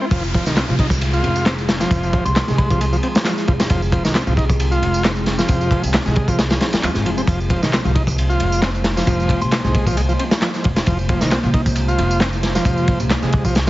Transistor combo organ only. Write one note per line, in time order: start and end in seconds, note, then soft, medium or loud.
0.01 0.05 C4 medium
0.12 0.23 F3 loud
0.34 0.45 F3 medium
0.46 0.56 D#3 medium
0.57 0.64 C4 loud
0.69 0.75 F3 medium
0.79 0.87 D#4 medium
1.13 1.45 F4 medium
1.46 1.54 C4 loud
1.80 2.24 F3 loud
2.48 2.69 G#3 medium
2.70 2.80 F3 medium
2.81 2.85 G#3 medium
2.93 2.97 F3 loud
3.03 3.07 C4 medium
3.25 3.33 F3 medium
3.48 3.52 F3 medium
3.60 3.64 C4 medium
3.70 3.81 F3 loud
3.92 4.03 F3 medium
4.04 4.14 D#3 medium
4.15 4.22 C4 loud
4.27 4.33 F3 medium
4.37 4.45 D#4 medium
4.71 5.03 F4 medium
5.04 5.12 C4 loud
5.39 5.82 F3 loud
6.06 6.27 G#3 medium
6.28 6.38 F3 medium
6.38 6.43 G#3 medium
6.50 6.55 F3 loud
6.61 6.65 C4 medium
6.83 6.91 F3 medium
7.05 7.10 F3 medium
7.18 7.22 C4 medium
7.28 7.39 F3 loud
7.50 7.61 F3 medium
7.62 7.72 D#3 medium
7.72 7.80 C4 loud
7.84 7.91 F3 medium
7.95 8.03 D#4 medium
8.29 8.61 F4 medium
8.62 8.70 C4 loud
8.97 9.40 F3 loud
9.64 9.85 G#3 medium
9.86 9.96 F3 medium
9.97 10.01 G#3 medium
10.09 10.13 F3 loud
10.19 10.24 C4 medium
10.42 10.49 F3 medium
10.64 10.69 F3 medium
10.76 10.80 C4 medium
10.87 10.98 F3 loud
11.09 11.20 F3 medium
11.21 11.30 D#3 medium
11.31 11.39 C4 loud
11.43 11.50 F3 medium
11.54 11.61 D#4 medium
11.88 12.20 F4 medium
12.21 12.28 C4 loud
12.55 12.99 F3 loud
13.22 13.44 G#3 medium
13.45 13.55 F3 medium
13.55 13.60 G#3 medium